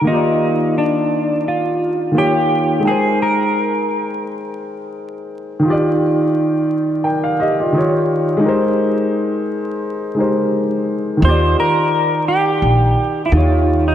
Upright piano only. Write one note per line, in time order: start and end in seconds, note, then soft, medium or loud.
0.01 2.09 D#3 medium
0.01 2.10 A#3 medium
0.07 2.12 F4 medium
0.07 2.13 G4 medium
0.13 2.15 D5 medium
2.11 2.83 D#3 medium
2.11 2.84 A#3 soft
2.11 2.85 F4 soft
2.16 2.86 G4 medium
2.16 2.86 C#5 medium
2.80 5.57 G#3 medium
2.80 5.59 D#4 soft
2.85 5.62 A#4 medium
2.85 5.60 G5 medium
2.91 5.63 C5 medium
5.59 7.67 D#3 medium
5.59 7.68 D#4 medium
5.64 7.01 F4 medium
5.64 7.03 G4 medium
5.70 7.04 D5 medium
7.04 7.23 A#4 soft
7.04 7.23 G5 medium
7.23 7.38 F5 medium
7.40 7.58 G4 medium
7.40 7.58 D#5 medium
7.60 7.74 F4 medium
7.60 7.92 D5 medium
7.72 8.43 D#3 medium
7.72 8.38 D#4 medium
7.72 8.44 F4 medium
7.77 8.41 G4 medium
7.77 8.45 C#5 medium
8.37 10.11 G#3 medium
8.37 10.12 D#4 medium
8.42 10.14 G4 medium
8.42 10.15 A#4 medium
8.48 10.17 C5 medium
10.15 11.21 G#3 medium
10.15 11.18 D#4 soft
10.15 11.22 G4 medium
10.19 11.23 A#4 medium
10.19 11.24 C5 medium
11.17 13.25 D#3 medium
11.17 13.26 D#4 medium
11.22 13.28 F4 medium
11.22 13.29 G4 medium
11.29 13.31 D5 medium
13.32 13.95 D#3 medium
13.32 13.95 D#4 medium
13.32 13.95 F4 medium
13.37 13.95 G4 medium
13.37 13.95 C#5 medium